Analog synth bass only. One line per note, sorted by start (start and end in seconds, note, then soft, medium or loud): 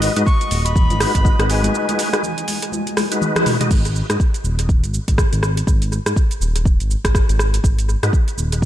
0.16 0.23 G#2 medium
0.51 0.91 D#1 medium
0.90 1.06 G#1 medium
1.15 1.30 G#1 medium
1.39 1.69 G#1 loud
3.71 4.03 G#1 loud
4.10 4.17 G#2 medium
4.44 4.85 D#1 medium
4.83 4.99 G#1 medium
5.08 5.24 G#1 medium
5.33 5.62 G#1 loud
5.67 5.99 G#1 loud
6.06 6.13 G#2 medium
6.41 6.81 D#1 medium
6.80 6.96 G#1 medium
7.04 7.20 G#1 medium
7.29 7.59 G#1 loud
7.64 7.96 G#1 loud
8.03 8.10 G#2 medium
8.38 8.65 D#1 medium